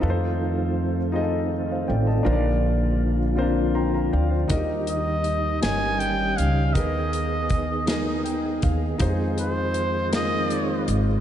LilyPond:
<<
  \new Staff \with { instrumentName = "Trumpet" } { \time 6/8 \key f \dorian \tempo 4. = 53 r2. | r2. | r8 ees''4 aes''8 g''8 f''8 | ees''2 r4 |
r8 c''4 ees''4 r8 | }
  \new Staff \with { instrumentName = "Grand piano" } { \time 6/8 \key f \dorian << { r2 r16 <c'' f''>16 <d'' g''>16 <ees'' a''>16~ | <ees'' a''>16 r4. r16 <g'' bes'' c'''>16 <f'' bes''>16 <d'' f'' g''>16 <c'' f''>16~ | <c'' f''>16 r2 r8. | r2 g''8 f''8 |
r2. | } \\ { <ees' f' a' ces'' c''>4~ <ees' f' a' ces'' c''>16 r16 <ees' f' aes' a' ees''>4~ <ees' f' aes' a' ees''>16 r16 | <d' f' bes' c'' d''>4~ <d' f' bes' c'' d''>16 r16 <c' d' f' bes' c''>4~ <c' d' f' bes' c''>16 r16 | <ees' ges' g' bes' ees''>4~ <ees' ges' g' bes' ees''>16 r16 <g ees' bes' des''>4~ <g ees' bes' des''>16 r16 | <ees' aes' bes' ces''>4~ <ees' aes' bes' ces''>16 r16 <ees' aes' bes' ees''>4~ <ees' aes' bes' ees''>16 r16 |
<ees' f' g' aes' c''>4~ <ees' f' g' aes' c''>16 r16 <ees' f' aes' bes'>4~ <ees' f' aes' bes'>16 r16 | } >> }
  \new Staff \with { instrumentName = "Grand piano" } { \clef bass \time 6/8 \key f \dorian r2. | bes,4. r4. | ees4. g,4. | ees4. r4. |
r2. | }
  \new Staff \with { instrumentName = "Tonewheel organ" } { \time 6/8 \key f \dorian f'2.~ | f'2. | g2. | aes'2. |
f'2. | }
  \new Staff \with { instrumentName = "Tonewheel organ" } { \clef bass \time 6/8 \key f \dorian << { <a c'>2. | f2. | ees'4. des'4. | ces'2. |
<aes c'>2. | } \\ { ees2. | d2. | ees4. ees4. | ees2.~ |
ees2. | } >> }
  \new Staff \with { instrumentName = "Upright bass" } { \clef bass \time 6/8 \key f \dorian f,2~ f,8 a,,8 | bes,,2~ bes,,8 d,8 | ees,4. g,,4 des,8 | ees,2~ ees,8 ees,8 |
f,2~ f,8 aes,,8 | }
  \new DrumStaff \with { instrumentName = "Drums" } \drummode { \time 6/8 r4. r4. | r4. r4. | <hh bd>8 hh8 hh8 <hh sn>8 hh8 hh8 | <hh bd>8 hh8 <hh bd>8 <hh sn>8 hh8 <hh bd>8 |
<hh bd>8 hh8 hh8 <hh sn>8 hh8 hh8 | }
>>